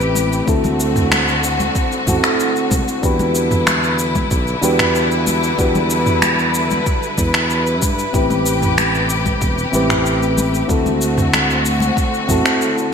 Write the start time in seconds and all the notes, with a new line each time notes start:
Already playing: A1 C3 A3 C4 E4 G4 B4
0.01 cabasa
0.15 high conga, cabasa
0.33 cabasa
0.46 D2 D3 C4 E4 F#4 A4, kick, cabasa
0.64 high conga, low conga, cabasa
0.80 cabasa
0.96 mid tom, cabasa
1.12 finger snap, high conga, cabasa
1.28 cabasa
1.44 cabasa
1.60 high conga, cabasa
1.75 kick, cabasa
1.92 cabasa
2.06 A1 C4 E4 F#4 A4, kick, mid tom, high conga, cabasa
2.24 finger snap, cabasa
2.40 cabasa
2.56 cabasa
2.71 C2, kick, high conga, cabasa
2.88 cabasa
3.02 E2 D3 G3 D4 E4 F#4 G4 B4, kick, cabasa
3.19 high conga, low conga, cabasa
3.35 cabasa
3.51 mid tom, cabasa
3.67 finger snap, high conga, cabasa
3.83 cabasa
3.99 cabasa
4.15 kick, high conga, cabasa
4.31 B1, kick, cabasa
4.47 cabasa
4.61 E2 D4 F#4 G4 B4, high conga, cabasa
4.79 finger snap, mid tom, cabasa
4.95 cabasa
5.11 cabasa
5.27 high conga, cabasa
5.43 cabasa
5.57 E2 D4 F#4 G4 B4, kick, cabasa
5.75 high conga, low conga, cabasa
5.90 cabasa
6.06 mid tom, cabasa
6.22 finger snap, high conga, cabasa
6.39 cabasa
6.55 cabasa
6.71 high conga, cabasa
6.86 kick, cabasa
7.03 cabasa
7.18 E2, kick, mid tom, high conga, cabasa
7.34 finger snap, cabasa
7.50 cabasa
7.67 cabasa
7.82 G2, kick, high conga, cabasa
7.99 cabasa
8.13 A1 C3 A3 C4 E4 G4 B4, kick, cabasa
8.30 high conga, low conga, cabasa
8.46 cabasa
8.62 mid tom, cabasa
8.78 finger snap, high conga, cabasa
8.95 cabasa
9.10 cabasa
9.26 kick, high conga, cabasa
9.42 E1, kick, cabasa
9.58 cabasa
9.72 A1 C4 E4 G4 B4, high conga, cabasa
9.90 finger snap, mid tom, cabasa
10.06 cabasa
10.23 cabasa
10.38 high conga, cabasa
10.54 cabasa
10.67 D2 D3 C4 E4 F#4 A4, kick, cabasa
10.86 high conga, low conga, cabasa
11.02 cabasa
11.18 mid tom, cabasa
11.34 finger snap, high conga, cabasa
11.50 cabasa
11.66 cabasa
11.80 high conga, cabasa
11.97 kick, cabasa
12.14 cabasa
12.28 A1 C4 E4 F#4 A4, kick, mid tom, high conga, cabasa
12.46 finger snap, cabasa
12.61 cabasa
12.78 cabasa